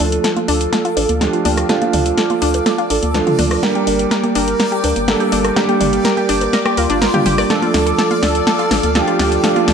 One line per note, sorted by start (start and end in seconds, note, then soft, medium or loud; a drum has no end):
0.00 0.19 D2 loud
0.00 1.18 F3 medium
0.00 1.18 A3 medium
0.00 1.18 D4 medium
0.00 1.18 F4 loud
0.00 0.39 A4 loud
0.00 3.59 A4 medium
0.00 9.73 D5 medium
0.00 3.59 F5 medium
0.00 9.73 D6 loud
0.00 open hi-hat loud
0.12 closed hi-hat soft
0.24 0.31 A4 medium
0.24 snare soft
0.24 closed hi-hat medium
0.36 0.41 F4 medium
0.36 closed hi-hat soft
0.36 high conga medium
0.48 0.67 D2 medium
0.48 0.51 D4 loud
0.48 1.22 A4 loud
0.48 open hi-hat loud
0.61 closed hi-hat medium
0.73 0.77 A4 medium
0.73 snare soft
0.73 closed hi-hat medium
0.73 high conga medium
0.85 0.89 F4 medium
0.85 closed hi-hat soft
0.97 1.06 A1 medium
0.97 1.01 D4 medium
0.97 open hi-hat loud
0.97 high bongo medium
1.09 1.28 D2 medium
1.09 closed hi-hat medium
1.09 high conga medium
1.21 1.67 F3 medium
1.21 1.67 A3 medium
1.21 1.67 D4 medium
1.21 1.67 F4 loud
1.21 1.84 G4 loud
1.21 1.28 A4 medium
1.21 snare medium
1.21 closed hi-hat medium
1.33 1.38 F4 medium
1.33 closed hi-hat soft
1.45 1.64 D2 medium
1.45 1.48 D4 loud
1.45 open hi-hat loud
1.45 high conga medium
1.57 cross-stick medium
1.57 closed hi-hat medium
1.69 3.12 F3 loud
1.69 3.12 A3 medium
1.69 3.12 D4 medium
1.69 3.12 F4 loud
1.69 1.74 A4 medium
1.69 snare medium
1.69 closed hi-hat medium
1.82 1.86 F4 medium
1.82 closed hi-hat soft
1.82 high conga medium
1.93 2.12 D2 loud
1.93 1.96 D4 medium
1.93 open hi-hat loud
1.93 mid tom medium
2.06 closed hi-hat soft
2.18 2.25 A4 medium
2.18 snare medium
2.18 closed hi-hat medium
2.30 2.34 F4 medium
2.30 closed hi-hat soft
2.30 high conga medium
2.42 2.61 D2 medium
2.42 2.45 D4 medium
2.42 open hi-hat loud
2.54 closed hi-hat soft
2.54 high bongo medium
2.66 2.71 A4 medium
2.66 snare medium
2.66 closed hi-hat soft
2.66 high conga medium
2.78 2.83 F4 medium
2.78 closed hi-hat soft
2.90 3.00 A1 medium
2.90 2.95 D4 medium
2.90 3.53 A4 loud
2.90 open hi-hat loud
3.03 3.21 D2 medium
3.03 closed hi-hat medium
3.03 high conga medium
3.14 3.60 F3 medium
3.14 3.60 A3 medium
3.14 3.60 D4 medium
3.14 3.60 F4 loud
3.14 3.21 A4 medium
3.14 snare medium
3.14 closed hi-hat medium
3.14 high bongo medium
3.27 3.31 F4 medium
3.27 closed hi-hat soft
3.27 mid tom medium
3.39 3.58 D2 medium
3.39 3.41 D4 loud
3.39 open hi-hat loud
3.39 mid tom medium
3.39 high conga medium
3.51 cross-stick medium
3.51 open hi-hat medium
3.51 high bongo medium
3.63 5.05 G3 loud
3.63 5.05 A#3 medium
3.63 7.46 A#3 medium
3.63 5.05 D4 medium
3.63 5.05 G4 loud
3.63 4.26 A#4 loud
3.63 3.67 A#4 medium
3.63 7.46 G5 medium
3.63 snare medium
3.63 closed hi-hat medium
3.75 3.80 G4 medium
3.75 closed hi-hat soft
3.75 high conga medium
3.87 4.06 G1 loud
3.87 3.90 D4 medium
3.87 open hi-hat loud
3.99 closed hi-hat soft
4.11 4.18 A#4 medium
4.11 snare medium
4.11 closed hi-hat soft
4.24 4.28 G4 medium
4.24 closed hi-hat soft
4.24 high conga medium
4.35 4.54 G1 medium
4.35 4.38 D4 loud
4.35 4.99 A#4 loud
4.35 open hi-hat loud
4.48 closed hi-hat soft
4.60 4.64 A#4 medium
4.60 snare medium
4.60 closed hi-hat soft
4.60 high conga medium
4.72 4.76 G4 medium
4.72 closed hi-hat soft
4.84 4.93 D2 medium
4.84 4.88 D4 medium
4.84 open hi-hat loud
4.84 high bongo medium
4.96 5.15 G1 medium
4.96 closed hi-hat soft
4.96 high conga medium
5.08 5.54 G3 medium
5.08 5.54 A#3 medium
5.08 5.54 D4 medium
5.08 5.54 G4 loud
5.08 5.71 A4 loud
5.08 5.15 A#4 medium
5.08 snare medium
5.08 closed hi-hat soft
5.20 5.25 G4 medium
5.20 closed hi-hat soft
5.32 5.51 G1 loud
5.32 5.35 D4 loud
5.32 open hi-hat loud
5.32 high conga medium
5.45 cross-stick medium
5.45 closed hi-hat soft
5.56 6.99 G3 loud
5.56 6.99 A#3 medium
5.56 6.99 D4 medium
5.56 6.99 G4 loud
5.56 5.61 A#4 medium
5.56 snare medium
5.56 closed hi-hat soft
5.69 5.73 G4 medium
5.69 closed hi-hat soft
5.69 high conga medium
5.80 6.00 G1 loud
5.80 5.83 D4 medium
5.80 open hi-hat loud
5.80 mid tom medium
5.93 closed hi-hat soft
6.05 6.12 A#4 medium
6.05 snare medium
6.05 closed hi-hat soft
6.17 6.22 G4 medium
6.17 closed hi-hat soft
6.17 high conga medium
6.29 6.48 G1 medium
6.29 6.32 D4 loud
6.29 open hi-hat loud
6.41 closed hi-hat soft
6.41 high bongo medium
6.53 6.58 A#4 medium
6.53 snare medium
6.53 closed hi-hat soft
6.53 high conga medium
6.66 6.70 G4 medium
6.66 cross-stick medium
6.66 closed hi-hat soft
6.77 6.87 D2 medium
6.77 7.41 F4 loud
6.77 6.82 A#4 medium
6.77 open hi-hat loud
6.90 7.08 G1 medium
6.90 6.94 D4 loud
6.90 closed hi-hat soft
6.90 high conga medium
7.02 7.06 A#4 medium
7.02 snare medium
7.02 closed hi-hat soft
7.02 high bongo medium
7.14 7.47 G3 medium
7.14 7.47 A#3 medium
7.14 7.47 D4 medium
7.14 7.47 G4 medium
7.14 7.17 G4 loud
7.14 closed hi-hat soft
7.14 mid tom loud
7.26 7.45 G1 loud
7.26 7.30 G4 loud
7.26 open hi-hat loud
7.26 mid tom medium
7.26 high conga medium
7.38 7.43 D5 loud
7.38 cross-stick medium
7.38 open hi-hat medium
7.38 high bongo medium
7.50 8.92 F3 loud
7.50 8.92 A3 medium
7.50 8.92 D4 medium
7.50 8.92 F4 loud
7.50 8.13 A4 loud
7.50 7.55 A4 medium
7.50 9.73 A4 medium
7.50 9.73 F5 medium
7.50 snare medium
7.50 closed hi-hat medium
7.50 riser medium
7.62 7.67 F4 medium
7.62 closed hi-hat soft
7.62 high conga medium
7.74 7.93 D2 loud
7.74 7.77 D4 medium
7.74 snare medium
7.74 open hi-hat loud
7.86 7.89 A4 medium
7.86 closed hi-hat soft
7.98 8.05 A4 medium
7.98 snare medium
7.98 closed hi-hat soft
8.11 8.15 F4 medium
8.11 closed hi-hat soft
8.11 high conga medium
8.23 8.41 D2 medium
8.23 8.25 D4 loud
8.23 8.97 A4 loud
8.23 snare medium
8.23 open hi-hat loud
8.35 closed hi-hat soft
8.47 8.51 A4 medium
8.47 snare medium
8.47 closed hi-hat medium
8.47 high conga medium
8.59 8.63 F4 medium
8.59 closed hi-hat soft
8.71 8.81 A1 medium
8.71 8.76 D4 medium
8.71 snare medium
8.71 open hi-hat loud
8.71 high bongo medium
8.83 9.02 D2 medium
8.83 closed hi-hat soft
8.83 high conga medium
8.95 9.41 F3 loud
8.95 9.41 A3 medium
8.95 9.41 D4 medium
8.95 9.41 F4 loud
8.95 9.58 G4 loud
8.95 9.02 A4 medium
8.95 snare medium
8.95 closed hi-hat medium
9.07 9.12 F4 medium
9.07 closed hi-hat soft
9.19 9.38 D2 medium
9.19 9.22 D4 loud
9.19 snare medium
9.19 open hi-hat loud
9.19 high conga medium
9.32 closed hi-hat soft
9.44 9.73 F3 loud
9.44 9.73 A3 medium
9.44 9.73 D4 medium
9.44 9.73 F4 loud
9.44 9.48 A4 medium
9.44 snare medium
9.44 closed hi-hat medium
9.56 9.60 F4 medium
9.56 closed hi-hat soft
9.56 high conga medium
9.68 9.73 D2 loud
9.68 9.71 D4 medium
9.68 snare medium
9.68 open hi-hat loud
9.68 mid tom medium